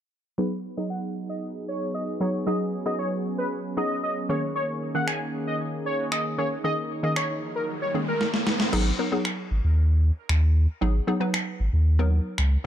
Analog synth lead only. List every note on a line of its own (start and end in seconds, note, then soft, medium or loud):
0.38 0.47 B4 loud
0.77 0.86 D#5 medium
0.90 0.99 F#5 medium
1.29 1.38 D#5 medium
1.68 1.86 C#5 medium
1.95 2.04 D#5 medium
2.21 2.30 C#5 medium
2.47 2.56 D#5 loud
2.86 2.95 D#5 medium
2.99 3.08 C#5 medium
3.38 3.47 B4 medium
3.77 3.95 D#5 medium
4.03 4.12 D#5 medium
4.30 4.39 C#5 medium
4.56 4.65 C#5 loud
4.95 5.04 F#5 medium
5.08 5.17 G#5 medium
5.47 5.56 D#5 medium
5.86 6.04 C#5 medium
6.12 6.21 D#5 medium
6.38 6.47 C#5 medium
6.64 6.73 D#5 loud
7.03 7.12 D#5 medium
7.16 7.25 C#5 medium
7.56 7.65 A#4 medium
7.82 7.91 C#5 medium
8.08 8.26 A#4 medium